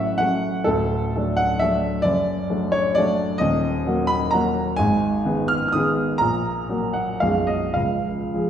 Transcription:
0.00 0.63 A1 medium
0.00 0.63 A2 medium
0.00 0.16 F#3 soft
0.00 0.16 A3 soft
0.00 0.16 C#4 medium
0.00 0.19 E5 medium
0.00 0.18 F#5 loud
0.18 0.64 F#3 medium
0.18 0.64 A3 medium
0.18 0.64 C#4 medium
0.18 0.66 F#5 loud
0.64 2.01 D1 medium
0.64 2.01 D2 medium
0.64 1.38 A4 medium
1.16 1.57 F#3 medium
1.16 1.58 A3 soft
1.16 1.58 D4 medium
1.37 1.60 F#5 loud
1.59 2.01 F#3 medium
1.59 2.01 A3 medium
1.59 2.01 D4 medium
1.59 2.04 E5 loud
2.02 3.37 F#1 medium
2.02 3.37 F#2 medium
2.02 2.73 D5 loud
2.50 2.93 F#3 medium
2.50 2.93 A3 medium
2.50 2.93 D4 medium
2.72 2.96 C#5 loud
2.95 3.37 F#3 medium
2.95 3.37 A3 medium
2.95 3.37 D4 medium
2.95 3.40 D5 loud
3.38 4.74 D#1 medium
3.38 4.74 D#2 medium
3.38 4.09 D#5 loud
3.86 4.29 F#3 medium
3.86 4.30 A#3 medium
3.86 4.30 F#4 medium
4.07 4.32 B5 loud
4.31 4.74 F#3 medium
4.31 4.74 A#3 medium
4.31 4.75 F#4 medium
4.31 4.77 A#5 loud
4.76 6.16 G#1 medium
4.76 6.16 G#2 medium
4.76 5.49 G#5 loud
5.25 5.70 D#3 medium
5.25 5.70 B3 medium
5.25 5.71 G#4 medium
5.48 5.66 F6 loud
5.68 5.74 F6 medium
5.73 6.16 D#3 medium
5.73 6.16 B3 medium
5.73 6.16 G#4 medium
5.73 6.19 D#6 loud
6.18 7.20 A#1 medium
6.18 7.20 A#2 medium
6.18 6.95 A#5 loud
6.69 7.19 F#3 soft
6.69 7.19 A#3 soft
6.69 7.19 F#4 medium
6.93 7.21 F#5 medium
7.20 7.76 B0 medium
7.20 7.76 B1 medium
7.20 7.73 F#3 soft
7.20 7.74 G#3 soft
7.20 7.74 G#4 soft
7.20 7.48 F5 medium
7.47 7.76 D#5 medium
7.74 8.50 C#1 medium
7.74 8.50 C#2 medium
7.74 8.50 F5 medium
8.34 8.50 F3 soft
8.34 8.50 G#3 soft
8.34 8.50 G#4 soft

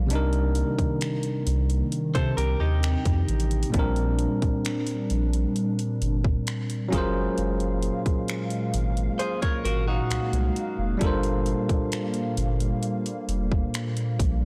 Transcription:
0.00 0.12 A#1 medium
0.00 1.88 A#3 medium
0.06 3.68 C3 medium
0.06 3.70 D#3 medium
0.06 3.69 G3 medium
0.06 closed hi-hat medium
0.11 0.63 C2 loud
0.11 3.70 D4 medium
0.11 3.71 D#4 medium
0.15 3.72 A#4 medium
0.33 closed hi-hat soft
0.55 closed hi-hat medium
0.79 0.88 C2 soft
0.79 kick medium
0.79 closed hi-hat soft
1.01 finger snap loud
1.01 closed hi-hat medium
1.23 closed hi-hat soft
1.47 1.82 C2 medium
1.47 closed hi-hat medium
1.70 closed hi-hat medium
1.92 3.72 C4 medium
1.92 closed hi-hat medium
2.15 2.33 C3 medium
2.15 2.37 A4 medium
2.15 2.36 C5 medium
2.15 kick medium
2.15 closed hi-hat soft
2.37 2.55 C2 medium
2.37 2.59 G4 medium
2.37 2.59 A#4 medium
2.37 closed hi-hat medium
2.60 2.96 D#2 medium
2.60 3.70 D#4 medium
2.60 3.70 G4 medium
2.83 finger snap loud
2.83 closed hi-hat medium
3.05 3.23 F2 medium
3.05 kick medium
3.05 closed hi-hat medium
3.28 3.64 A1 loud
3.28 closed hi-hat medium
3.40 closed hi-hat medium
3.51 closed hi-hat medium
3.63 closed hi-hat medium
3.70 6.86 A#2 medium
3.70 14.45 A#2 medium
3.70 6.87 G3 medium
3.70 6.89 G3 medium
3.70 6.89 D4 medium
3.70 closed hi-hat medium
3.74 4.27 A#1 loud
3.74 6.88 C4 medium
3.74 6.90 D4 medium
3.74 kick loud
3.79 6.91 A#4 medium
3.96 closed hi-hat soft
4.19 closed hi-hat medium
4.42 4.51 A#1 soft
4.42 kick medium
4.42 closed hi-hat soft
4.65 finger snap loud
4.65 closed hi-hat medium
4.87 closed hi-hat soft
5.10 5.46 A#1 medium
5.10 closed hi-hat medium
5.33 closed hi-hat medium
5.56 closed hi-hat medium
5.79 closed hi-hat soft
6.02 6.37 G1 medium
6.02 closed hi-hat medium
6.25 kick medium
6.47 finger snap loud
6.47 closed hi-hat medium
6.70 closed hi-hat medium
6.89 7.28 F#1 loud
6.89 10.50 F#3 medium
6.89 10.97 G#3 medium
6.89 14.45 A#3 medium
6.89 10.51 C#4 medium
6.89 10.52 F4 medium
6.89 14.45 F5 medium
6.89 kick loud
6.93 10.53 G#4 medium
6.93 10.53 A#4 medium
6.93 closed hi-hat medium
6.98 10.54 C5 medium
7.38 7.91 F#1 loud
7.38 closed hi-hat medium
7.60 closed hi-hat soft
7.83 closed hi-hat medium
8.06 8.15 G#1 soft
8.06 kick medium
8.06 closed hi-hat soft
8.28 finger snap loud
8.28 closed hi-hat medium
8.50 closed hi-hat soft
8.74 9.09 G#1 loud
8.74 closed hi-hat medium
8.97 closed hi-hat medium
9.19 9.41 G#4 medium
9.19 9.41 C5 medium
9.19 closed hi-hat medium
9.42 9.63 A#4 medium
9.42 9.64 C#5 medium
9.42 kick medium
9.42 closed hi-hat medium
9.65 10.00 G#1 medium
9.65 9.86 F#4 medium
9.65 9.86 A#4 medium
9.65 closed hi-hat medium
9.88 10.97 D#4 medium
9.88 10.97 F#4 medium
10.10 10.19 C2 soft
10.10 finger snap loud
10.10 closed hi-hat medium
10.33 10.51 C2 medium
10.33 closed hi-hat medium
10.56 closed hi-hat medium
10.78 10.96 F1 medium
10.97 11.54 G1 loud
10.97 14.45 G3 medium
10.97 14.45 D4 medium
10.97 14.45 F4 medium
10.97 kick loud
10.97 closed hi-hat medium
11.03 14.45 A4 medium
11.03 14.45 A#4 medium
11.03 14.45 C5 medium
11.23 closed hi-hat soft
11.46 closed hi-hat medium
11.69 11.79 G1 soft
11.69 kick medium
11.69 closed hi-hat soft
11.92 finger snap loud
11.92 closed hi-hat medium
12.14 closed hi-hat soft
12.37 12.73 G1 loud
12.37 closed hi-hat medium
12.60 closed hi-hat medium
12.83 closed hi-hat medium
13.06 closed hi-hat soft
13.28 13.64 F1 medium
13.28 closed hi-hat medium
13.52 kick medium
13.74 finger snap loud
13.74 closed hi-hat medium
13.97 closed hi-hat medium
14.20 14.45 A#1 medium
14.20 kick loud
14.20 closed hi-hat medium

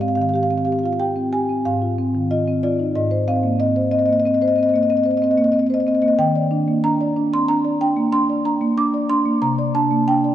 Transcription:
0.00 1.60 G#2 medium
0.00 0.28 C4 medium
0.00 0.11 G4 medium
0.00 0.08 F5 medium
0.08 0.15 F5 medium
0.15 0.44 D#3 medium
0.15 0.22 F5 medium
0.22 0.29 F5 medium
0.29 0.35 F5 medium
0.34 0.60 G4 medium
0.34 0.43 F5 medium
0.43 0.50 F5 medium
0.50 0.77 C4 medium
0.50 0.58 F5 medium
0.58 0.65 F5 medium
0.65 0.93 G4 medium
0.65 0.72 F5 medium
0.72 0.79 F5 medium
0.79 0.86 F5 medium
0.83 1.00 F4 medium
0.83 0.93 F5 medium
0.93 0.96 F5 medium
1.00 1.26 G4 medium
1.00 1.31 G5 medium
1.16 1.42 C4 medium
1.32 1.58 G4 medium
1.32 1.64 G#5 medium
1.49 1.65 C4 medium
1.65 2.92 G#2 medium
1.65 2.28 F5 medium
1.82 2.08 F4 soft
1.98 2.24 C4 medium
2.15 2.40 D#3 medium
2.31 2.57 F4 medium
2.31 2.62 D#5 medium
2.47 2.73 C4 medium
2.63 2.89 F4 medium
2.63 2.94 D5 medium
2.79 2.95 D#4 soft
2.95 6.15 G#2 medium
2.95 3.26 D#5 medium
3.11 3.37 C5 medium
3.28 3.53 C4 medium
3.28 3.58 F5 medium
3.43 3.69 A#3 medium
3.59 3.85 C4 medium
3.59 3.90 D#5 medium
3.76 4.02 C5 medium
3.91 4.18 C4 medium
3.91 3.99 D#5 medium
3.99 4.06 D#5 medium
4.06 4.25 A#3 medium
4.06 4.13 D#5 medium
4.13 4.20 D#5 medium
4.20 4.27 D#5 medium
4.25 4.51 C4 medium
4.25 4.34 D#5 medium
4.34 4.41 D#5 medium
4.41 4.67 C5 medium
4.41 4.48 D#5 medium
4.48 4.56 D#5 medium
4.56 4.83 C4 medium
4.56 4.63 D#5 medium
4.63 4.69 D#5 medium
4.69 4.76 D#5 medium
4.74 4.99 A#3 medium
4.74 4.83 D#5 medium
4.83 4.90 D#5 medium
4.90 5.15 C4 medium
4.90 4.97 D#5 medium
4.97 5.04 D#5 medium
5.04 5.31 C5 medium
5.04 5.11 D#5 medium
5.11 5.17 D#5 medium
5.17 5.24 D#5 medium
5.22 5.47 C4 medium
5.22 5.31 D#5 medium
5.31 5.38 D#5 medium
5.37 5.63 A#3 medium
5.37 5.44 D#5 medium
5.44 5.52 D#5 medium
5.52 5.79 C4 medium
5.52 5.59 D#5 medium
5.59 5.67 D#5 medium
5.67 5.96 C5 medium
5.67 5.74 D#5 medium
5.74 5.80 D#5 medium
5.80 5.88 D#5 medium
5.87 6.12 C4 medium
5.87 5.95 D#5 medium
5.95 6.02 D#5 medium
6.02 6.19 A#3 medium
6.02 6.08 D#5 medium
6.08 6.14 D#5 medium
6.19 9.38 D#3 medium
6.19 6.81 G5 loud
6.36 6.61 D5 medium
6.51 6.77 D4 medium
6.68 6.93 A#3 medium
6.84 7.09 D4 medium
6.84 7.30 A#5 loud
7.01 7.26 D5 medium
7.16 7.42 D4 medium
7.33 7.48 C4 medium
7.33 7.49 C6 loud
7.48 7.74 D4 medium
7.48 7.79 A#5 loud
7.65 7.90 D5 medium
7.81 8.06 D4 medium
7.81 8.12 G5 loud
7.97 8.22 A#3 medium
8.12 8.38 D4 medium
8.12 8.44 C6 loud
8.30 8.55 D5 medium
8.45 8.71 D4 medium
8.45 8.76 A#5 medium
8.61 8.87 A#3 medium
8.77 9.03 D4 medium
8.77 9.08 D6 loud
8.94 9.19 D5 medium
9.09 9.35 D4 medium
9.09 9.40 C6 loud
9.25 9.42 A#3 medium
9.42 10.35 C3 medium
9.42 9.73 A#5 loud
9.58 9.84 D5 medium
9.74 10.01 D4 medium
9.74 10.06 A5 loud
9.91 10.17 A#3 medium
10.08 10.34 D4 medium
10.08 10.35 G5 loud
10.24 10.35 D5 medium

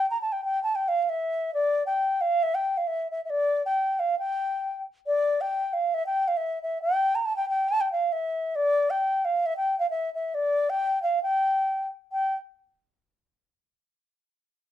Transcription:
0.10 0.20 A#5 medium
0.22 0.34 A5 medium
0.32 0.44 G5 medium
0.45 0.63 G5 loud
0.63 0.77 A5 loud
0.75 0.90 G5 medium
0.88 1.02 F5 loud
1.02 1.11 F5 medium
1.09 1.54 E5 medium
1.54 1.86 D5 loud
1.86 2.23 G5 medium
2.21 2.44 F5 medium
2.43 2.56 E5 loud
2.55 2.79 G5 medium
2.77 2.89 F5 medium
2.87 3.11 E5 medium
3.11 3.23 E5 medium
3.25 3.31 E5 medium
3.30 3.64 D5 loud
3.66 4.01 G5 medium
3.99 4.18 F5 medium
4.19 4.82 G5 loud
5.07 5.42 D5 loud
5.41 5.75 G5 medium
5.73 5.96 F5 medium
5.94 6.06 E5 loud
6.06 6.29 G5 loud
6.28 6.39 F5 medium
6.37 6.62 E5 medium
6.63 6.81 E5 medium
6.82 7.17 G5 loud
7.15 7.27 A#5 medium
7.26 7.36 A5 loud
7.37 7.48 G5 loud
7.50 7.70 G5 loud
7.68 7.82 A5 loud
7.81 7.91 G5 medium
7.92 8.14 F5 medium
8.12 8.57 E5 loud
8.56 8.92 D5 loud
8.90 9.26 G5 loud
9.25 9.47 F5 medium
9.46 9.56 E5 loud
9.57 9.78 G5 loud
9.79 9.89 F5 medium
9.90 10.13 E5 medium
10.14 10.36 E5 medium
10.34 10.71 D5 loud
10.70 11.02 G5 loud
11.02 11.22 F5 medium
11.23 11.87 G5 loud
12.12 12.34 G5 medium

